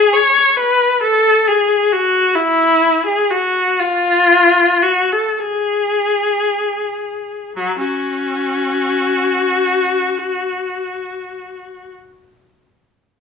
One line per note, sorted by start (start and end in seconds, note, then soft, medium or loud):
0.00 0.12 G#4 loud
0.13 0.57 C#5 loud
0.57 1.02 B4 loud
1.02 1.46 A4 loud
1.48 1.93 G#4 loud
1.92 2.38 F#4 loud
2.35 3.06 E4 loud
3.06 3.30 G#4 loud
3.30 3.79 F#4 loud
3.80 4.83 F4 loud
4.82 5.11 F#4 loud
5.13 5.40 A4 medium
5.39 7.57 G#4 loud
7.56 7.79 F#3 loud
7.79 10.12 C#4 medium
7.79 11.91 F#4 loud